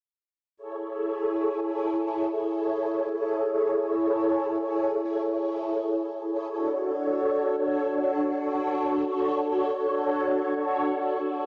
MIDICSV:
0, 0, Header, 1, 2, 480
1, 0, Start_track
1, 0, Tempo, 372671
1, 728, Time_signature, 4, 2, 24, 8
1, 14760, End_track
2, 0, Start_track
2, 0, Title_t, "String machine"
2, 0, Program_c, 0, 50
2, 1091, Note_on_c, 0, 69, 69
2, 1091, Note_on_c, 0, 73, 82
2, 1092, Note_on_c, 0, 64, 78
2, 1092, Note_on_c, 0, 68, 71
2, 2021, Note_off_c, 0, 68, 0
2, 2021, Note_off_c, 0, 69, 0
2, 2021, Note_off_c, 0, 73, 0
2, 2022, Note_off_c, 0, 64, 0
2, 3009, Note_on_c, 0, 64, 79
2, 3010, Note_on_c, 0, 73, 85
2, 3012, Note_on_c, 0, 68, 67
2, 3012, Note_on_c, 0, 69, 70
2, 3940, Note_off_c, 0, 64, 0
2, 3940, Note_off_c, 0, 73, 0
2, 3941, Note_off_c, 0, 68, 0
2, 3941, Note_off_c, 0, 69, 0
2, 4920, Note_on_c, 0, 68, 69
2, 4920, Note_on_c, 0, 73, 84
2, 4921, Note_on_c, 0, 69, 72
2, 4924, Note_on_c, 0, 64, 75
2, 5855, Note_off_c, 0, 73, 0
2, 5856, Note_off_c, 0, 68, 0
2, 5856, Note_off_c, 0, 69, 0
2, 5857, Note_off_c, 0, 64, 0
2, 6846, Note_on_c, 0, 68, 72
2, 6846, Note_on_c, 0, 73, 84
2, 6848, Note_on_c, 0, 69, 70
2, 6849, Note_on_c, 0, 64, 77
2, 7778, Note_off_c, 0, 68, 0
2, 7778, Note_off_c, 0, 73, 0
2, 7779, Note_off_c, 0, 69, 0
2, 7780, Note_off_c, 0, 64, 0
2, 8770, Note_on_c, 0, 66, 68
2, 8771, Note_on_c, 0, 62, 76
2, 8771, Note_on_c, 0, 73, 87
2, 8772, Note_on_c, 0, 69, 67
2, 9700, Note_off_c, 0, 66, 0
2, 9701, Note_off_c, 0, 62, 0
2, 9701, Note_off_c, 0, 69, 0
2, 9701, Note_off_c, 0, 73, 0
2, 10686, Note_on_c, 0, 66, 71
2, 10686, Note_on_c, 0, 69, 72
2, 10689, Note_on_c, 0, 62, 77
2, 10689, Note_on_c, 0, 73, 87
2, 11618, Note_off_c, 0, 66, 0
2, 11618, Note_off_c, 0, 69, 0
2, 11620, Note_off_c, 0, 62, 0
2, 11620, Note_off_c, 0, 73, 0
2, 12599, Note_on_c, 0, 66, 70
2, 12600, Note_on_c, 0, 69, 70
2, 12603, Note_on_c, 0, 73, 85
2, 12604, Note_on_c, 0, 62, 76
2, 13535, Note_off_c, 0, 66, 0
2, 13535, Note_off_c, 0, 69, 0
2, 13537, Note_off_c, 0, 62, 0
2, 13537, Note_off_c, 0, 73, 0
2, 14525, Note_on_c, 0, 69, 70
2, 14526, Note_on_c, 0, 62, 77
2, 14527, Note_on_c, 0, 73, 85
2, 14528, Note_on_c, 0, 66, 69
2, 14760, Note_off_c, 0, 62, 0
2, 14760, Note_off_c, 0, 66, 0
2, 14760, Note_off_c, 0, 69, 0
2, 14760, Note_off_c, 0, 73, 0
2, 14760, End_track
0, 0, End_of_file